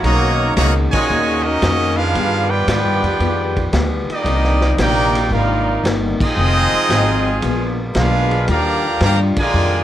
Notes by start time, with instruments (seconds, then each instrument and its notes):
Already playing: trombone section A#3
0.03 upright bass B1, steel-string acoustic guitar B2 A#3 D#4 G#4, trombone section C#3 D#3 F#3 A#3 D#4, trumpet section F#4 C#5 D#5 A#5, ride
0.56 upright bass C#2, steel-string acoustic guitar B2 A#3 D#4 G#4, trombone section D#3 F#3 A#3, trumpet section F#4 C#5 D#5 A#5, snare, hi-hat pedal, ride
0.92 trombone section A#2 D#3 G#3, trumpet section F#4 C#5 D#5 G#5, muted upright bass stroke, kick, crash
1.09 upright bass D#2, steel-string acoustic guitar B2 A#3 D#4 G#4
1.43 trombone section F#3 A#3 D#4, trumpet section C#4 F#4 A#4 D#5
1.62 upright bass F2, steel-string acoustic guitar B2 A#3 D#4 G#4, snare, hi-hat pedal, ride
1.97 trombone section B3 D4 F4, trumpet section D4 G#4 B4 F5
2.14 upright bass G2, trombone section F3 B3 G4, steel-string acoustic guitar G3 B3 F4 G#4, ride
2.50 trombone section B3 D4 G4, trumpet section F4 B4 D5 G5
2.67 upright bass G#2, steel-string acoustic guitar G3 B3 F4 G#4, snare, hi-hat pedal, ride
2.85 upright bass G2
3.03 upright bass F2, ride
3.20 upright bass F2, steel-string acoustic guitar G3 B3 F4 G#4, ride
3.56 kick, ride
3.72 upright bass D2, steel-string acoustic guitar G3 B3 F4 G#4, snare, hi-hat pedal, ride
4.08 trombone section G3 A#3 D#4, trumpet section D#5, muted upright bass stroke, ride
4.13 trumpet section A#3 G4 D5
4.24 upright bass C2, steel-string acoustic guitar C3 D#3 A#3 D4, trombone section C3 D#3 A#3 D#4, ride
4.44 snare
4.61 snare
4.78 upright bass A#1, steel-string acoustic guitar C3 D#3 A#3 D4, trombone section A#3 D#4 G4, trumpet section D#4 A#4 D5 G5, snare, hi-hat pedal, ride
5.15 ride
5.30 upright bass G#1, steel-string acoustic guitar C3 D#3 A#3 D4, trombone section G3 A#3 F4, trumpet section A#4 D5 F5
5.35 trumpet section D#4
5.83 upright bass G1, steel-string acoustic guitar C3 D#3 A#3 D4, snare, hi-hat pedal, ride
6.20 trombone section G#3 C4 D#4, trumpet section C4 F4 G#4 D#5, muted upright bass stroke, kick, crash
6.36 upright bass F1, steel-string acoustic guitar F2 D#3 G#3 C4, trombone section C3 F3 G#3 D#4
6.73 muted upright bass stroke
6.89 upright bass G#1, steel-string acoustic guitar F2 D#3 G#3 C4, snare, hi-hat pedal, ride
7.42 upright bass A#1, steel-string acoustic guitar A#2 G#3 B3 D4, trombone section B2 A#3, ride
7.94 upright bass B1, steel-string acoustic guitar A#2 G#3 B3 D4, trombone section G#3 D4 F4, snare, hi-hat pedal, ride
7.98 trumpet section D4 G#4 B4 F5
8.31 ride
8.47 upright bass D#2, trombone section D3 F3 G3 A#3 F4, steel-string acoustic guitar D#3 G3 D4 F4, trumpet section D5 F5 A#5, ride
8.51 trumpet section G4
9.00 upright bass G2, trombone section D3 G3 A#3, steel-string acoustic guitar D#3 G3 D4 F4, trumpet section G4 D5 F5 A#5, snare, hi-hat pedal, ride
9.36 trombone section A#2 D3 G#3, trumpet section F4 A#4 D5 G#5, muted upright bass stroke, kick, crash
9.53 upright bass F2, steel-string acoustic guitar D#3 G3 D4 F4